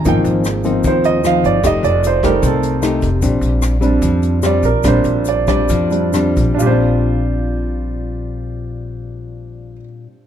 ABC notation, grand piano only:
X:1
M:4/4
L:1/8
Q:1/4=144
K:Bb
V:1 name="Grand piano"
g z3 c e f d | e d c B A3 z | z6 d B | c2 d d z4 |
[DFGc]8- | [DFGc]8 |]
V:2 name="Grand piano"
[F,B,C]3 [F,B,C] z4 | z3 [G,A,E]3 z2 | z3 [G,CD]3 z2 | [G,CD]3 z2 [G,CD] z2 |
z8 | z8 |]